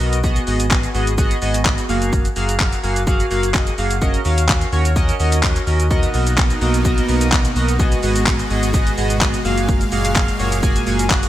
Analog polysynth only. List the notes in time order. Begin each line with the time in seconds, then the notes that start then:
0.00 B3 F#4 A#4 D#5
0.23 B3 F#4 G#4 D#5
0.47 B3 F#4 G#4 D#5
0.71 B3 F#4 G#4 D#5
0.94 B3 F#4 G#4 D#5
1.18 B3 F#4 G#4 D#5
1.42 B3 F#4 G#4 D#5
1.65 B3 F#4 G#4 D#5
1.89 A#3 F#4 G#4 F5
2.36 A#3 F#4 G#4 F5
2.60 A#3 F#4 G#4 F5
2.83 A#3 F#4 G#4 F5
3.07 A#3 F#4 G#4 F5
3.30 A#3 F#4 G#4 F5
3.54 A#3 F#4 G#4 D#5
3.78 A#3 F#4 G#4 F5
4.01 C#4 F#4 A#4 D#5
4.25 C#4 F#4 A#4 F5
4.49 C#4 F#4 A#4 F5
4.72 C#4 F#4 A#4 C#5
4.96 C#4 F#4 A#4 D#5
5.19 C#4 F#4 A#4 D#5
5.43 C#4 F#4 A#4 D#5
5.67 C#4 F#4 A#4 D#5
5.90 B3 F#4 A#4 D#5
6.14 B3 F#4 A#4 D#5
6.38 B3 F#4 A#4 D#5
6.61 B3 F#4 A#4 D#5
6.85 B3 F#4 A#4 D#5
7.09 B3 F#4 A#4 D#5
7.32 B3 F#4 A#4 D#5
7.56 B3 F#4 A#4 D#5
7.79 B3 F#4 G#4 D#5
8.03 B3 F#4 G#4 D#5
8.27 F#4 G#4 D#5
8.50 B3 F#4 G#4 D#5
8.74 B3 F#4 G#4 D#5
8.97 B3 F#4 G#4 D#5
9.21 B3 F#4 G#4 D#5
9.45 A#3 F#4 G#4 F5
9.92 A#3 F#4 G#4 F5
10.15 A#3 F#4 G#4 F5
10.39 A#3 F#4 G#4 C#5
10.63 A#3 F#4 G#4 G#5
10.86 A#3 F#4 G#4 G#5
11.10 A#3 F#4 G#4 F#5